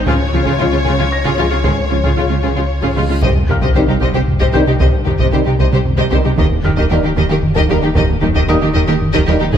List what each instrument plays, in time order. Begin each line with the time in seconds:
Already playing: grand piano C6 G6
0.07 sub bass C#2, double bass section C#2, synth arpeggio sound C#3, cello section C#3, viola section F4, violin section G#4 C#5, taiko
0.33 double bass section C#2, cello section C#3, synth arpeggio sound F3, violin section C#4, viola section F4
0.44 synth arpeggio sound C#3, cello section C#3, viola section F4, violin section G#4, taiko
0.58 double bass section C#2, cello section C#3, synth arpeggio sound F3, french horn section G#3 F4, violin section F4, viola section F4
0.71 cello section C#3, synth arpeggio sound G#3, violin section C#4, viola section F4
0.84 double bass section C#2, synth arpeggio sound C#3, cello section C#3, viola section F4, violin section G#4
0.98 cello section C#3, synth arpeggio sound G#3, violin section F4, viola section F4
1.12 grand piano A#6
1.24 synth arpeggio sound C#3, cello section C#3, viola section F4, violin section G#4, taiko
1.38 double bass section C#2, cello section C#3, synth arpeggio sound F3, french horn section G#3 F4, viola section F4, violin section F4
1.50 cello section C#3, synth arpeggio sound G#3, violin section C#4, viola section F4
1.64 double bass section C#2, synth arpeggio sound C#3, cello section C#3, viola section F4, violin section G#4, taiko, reverse cymbal
1.90 double bass section C#2, cello section C#3, synth arpeggio sound F3, violin section C#4, viola section F4
2.04 cello section C#3, synth arpeggio sound C#3, viola section F4, violin section G#4, taiko
2.17 double bass section C#2, cello section C#3, synth arpeggio sound F3, french horn section G#3 F4, viola section F4, violin section F4
2.30 cello section C#3, synth arpeggio sound G#3, violin section C#4, viola section F4
2.43 double bass section C#2, cello section C#3, synth arpeggio sound C#3, viola section F4, violin section G#4
2.55 cello section C#3, synth arpeggio sound G#3, violin section F4, viola section F4
2.82 cello section C#3, synth arpeggio sound C#3, viola section F4, violin section G#4, taiko
2.96 double bass section C#2, cello section C#3, synth arpeggio sound F3, french horn section G#3 F4, viola section F4, violin section F4
3.09 cello section C#3, synth arpeggio sound G#3, violin section C#4, viola section F4
3.22 analog synth bass C2, double bass section C2, sub bass C2, cello section C3, synth arpeggio sound C3, viola section G4, violin section C5 D#5, taiko, sub drop
3.36 analog synth bass C2
3.48 double bass section C2, analog synth bass C2, cello section C3, synth arpeggio sound D#3, violin section D#4 G4, viola section G4, grand piano F5 F6, taiko low
3.62 analog synth bass C2, cello section C3, synth arpeggio sound C3, viola section G4, violin section C5 D#5, taiko
3.74 analog synth bass C2, double bass section C2, cello section C3, synth arpeggio sound D#3, trombone section D#3 G3, french horn section C4 D#4, viola section G4, violin section G4 C5
3.88 analog synth bass C3, cello section C3, synth arpeggio sound G3, violin section D#4 G4, viola section G4
4.00 double bass section C2, analog synth bass C2, synth arpeggio sound C3, cello section C3, viola section G4, violin section C5 D#5
4.14 analog synth bass C3, cello section C3, synth arpeggio sound G3, viola section G4, violin section G4 C5
4.28 analog synth bass C3, taiko low
4.40 analog synth bass C2, synth arpeggio sound C3, cello section C3, viola section G4, violin section C5 D#5, taiko
4.53 double bass section C2, analog synth bass C2, cello section C3, trombone section D#3 G3, synth arpeggio sound D#3, french horn section C4 D#4, viola section G4, violin section G4 C5, grand piano G6
4.67 analog synth bass C3, cello section C3, synth arpeggio sound G3, violin section D#4 G4, viola section G4
4.80 double bass section C2, analog synth bass C2, synth arpeggio sound C3, cello section C3, viola section G4, violin section C5 D#5, taiko
4.94 analog synth bass C2
5.05 double bass section C2, analog synth bass C2, cello section C3, synth arpeggio sound D#3, violin section D#4 G4, viola section G4, taiko low
5.19 analog synth bass C2, synth arpeggio sound C3, cello section C3, viola section G4, violin section C5 D#5, taiko
5.32 analog synth bass C2, double bass section C2, cello section C3, trombone section D#3 G3, synth arpeggio sound D#3, french horn section C4 D#4, viola section G4, violin section G4 C5
5.45 cello section C3, analog synth bass C3, synth arpeggio sound G3, violin section D#4 G4, viola section G4
5.58 double bass section C2, analog synth bass C2, synth arpeggio sound C3, cello section C3, viola section G4, violin section C5 D#5
5.72 cello section C3, analog synth bass C3, synth arpeggio sound G3, viola section G4, violin section G4 C5
5.85 analog synth bass C3, taiko low
5.97 analog synth bass C2, synth arpeggio sound C3, cello section C3, viola section G4, violin section C5 D#5, taiko
6.10 analog synth bass C2, double bass section C2, cello section C3, synth arpeggio sound D#3, trombone section D#3 G3, french horn section C4 D#4, violin section G4 C5, viola section G4
6.24 cello section C3, analog synth bass C3, synth arpeggio sound G3, violin section D#4 G4, viola section G4
6.38 sub bass D#1, double bass section D#2, analog synth bass D#2, synth arpeggio sound D#3, cello section D#3, viola section G4, violin section A#4 D#5, taiko
6.52 analog synth bass D#2
6.64 double bass section D#2, analog synth bass D#2, cello section D#3, synth arpeggio sound G3, violin section D#4 G4, viola section G4, grand piano F6, taiko low
6.77 analog synth bass D#2, synth arpeggio sound D#3, cello section D#3, viola section G4, violin section A#4 D#5, taiko
6.90 double bass section D#2, analog synth bass D#2, trombone section D#3 G3, cello section D#3, synth arpeggio sound G3, french horn section A#3 D#4, violin section G4 A#4, viola section G4
7.03 cello section D#3, analog synth bass D#3, synth arpeggio sound A#3, violin section D#4 G4, viola section G4
7.16 double bass section D#2, analog synth bass D#2, cello section D#3, synth arpeggio sound D#3, viola section G4, violin section A#4 D#5
7.29 analog synth bass D#3, cello section D#3, synth arpeggio sound A#3, violin section G4 A#4, viola section G4
7.43 analog synth bass D#3, taiko low
7.56 analog synth bass D#2, synth arpeggio sound D#3, cello section D#3, viola section G4, violin section A#4 D#5, taiko
7.68 double bass section D#2, analog synth bass D#2, cello section D#3, trombone section D#3 G3, synth arpeggio sound G3, french horn section A#3 D#4, viola section G4, violin section G4 A#4
7.82 cello section D#3, analog synth bass D#3, synth arpeggio sound A#3, violin section D#4 G4, viola section G4
7.95 analog synth bass D#2, double bass section D#2, synth arpeggio sound D#3, cello section D#3, viola section G4, violin section A#4 D#5, taiko
8.10 analog synth bass D#2
8.21 double bass section D#2, analog synth bass D#2, cello section D#3, synth arpeggio sound G3, violin section D#4 G4, viola section G4, taiko low
8.35 analog synth bass D#2, synth arpeggio sound D#3, cello section D#3, viola section G4, violin section A#4 D#5, taiko
8.48 double bass section D#2, analog synth bass D#2, trombone section D#3 G3, cello section D#3, synth arpeggio sound G3, french horn section A#3 D#4, violin section G4 A#4, viola section G4, grand piano D#5 D#6
8.61 cello section D#3, analog synth bass D#3, synth arpeggio sound A#3, violin section D#4 G4, viola section G4
8.74 double bass section D#2, analog synth bass D#2, synth arpeggio sound D#3, cello section D#3, viola section G4, violin section A#4 D#5
8.87 analog synth bass D#3, cello section D#3, synth arpeggio sound A#3, violin section G4 A#4, viola section G4
9.02 analog synth bass D#3, taiko low
9.13 analog synth bass D#2, synth arpeggio sound D#3, cello section D#3, viola section G4, violin section A#4 D#5, taiko
9.26 double bass section D#2, analog synth bass D#2, trombone section D#3 G3, cello section D#3, synth arpeggio sound G3, french horn section A#3 D#4, viola section G4, violin section G4 A#4
9.39 analog synth bass D#3, cello section D#3, synth arpeggio sound A#3, violin section D#4 G4, viola section G4
9.52 sub bass G#1, double bass section G#1, analog synth bass G#2, cello section G#2, synth arpeggio sound G#3, viola section G#4, violin section C5, taiko